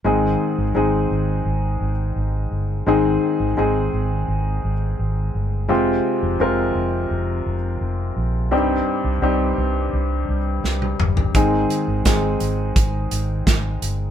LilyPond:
<<
  \new Staff \with { instrumentName = "Grand piano" } { \time 4/4 \key aes \lydian \tempo 4 = 85 <aes c' ees' aes'>4 <aes c' ees' aes'>4. r4. | <aes c' ees' aes'>4 <aes c' ees' aes'>4. r4. | <aes c' f' g'>4 <aes c' f' bes'>4. r4. | <g c' ees' g'>4 <g c' ees' g'>4. r4. |
<aes c' ees' aes'>4 <aes c' ees' aes'>4. r4. | }
  \new Staff \with { instrumentName = "Grand piano" } { \clef bass \time 4/4 \key aes \lydian <aes, ees>4. r2 r8 | <aes, ees>4. r2 r8 | c4. r2 r8 | g,4. r2 r8 |
<aes, ees>4. r2 r8 | }
  \new Staff \with { instrumentName = "Fingered electric bass" } { \clef bass \time 4/4 \key aes \lydian aes,,8 r16 aes,,16 aes,,8 aes,,8 aes,,8 aes,,8 aes,,8 g,,8 | aes,,8 r16 aes,,16 aes,,8 aes,,8 aes,,8 aes,,8 aes,,8 g,,8 | f,,8 r16 f,,16 f,,8 f,,8 f,,8 f,,8 f,,8 bes,,8 | c,8 r16 c,16 c,8 c,8 c,8 c,8 c,8 g,,8 |
aes,,8 r16 aes,,16 aes,,8 aes,,8 aes,,8 aes,,8 aes,,8 g,,8 | }
  \new DrumStaff \with { instrumentName = "Drums" } \drummode { \time 4/4 r4 r4 r4 r4 | r4 r4 r4 r4 | r4 r4 r4 r4 | r4 r4 r4 sn16 tommh16 toml16 tomfh16 |
<hh bd>8 hh8 <hh bd sn>8 hh8 <hh bd>8 hh8 <hh bd sn>8 hh8 | }
>>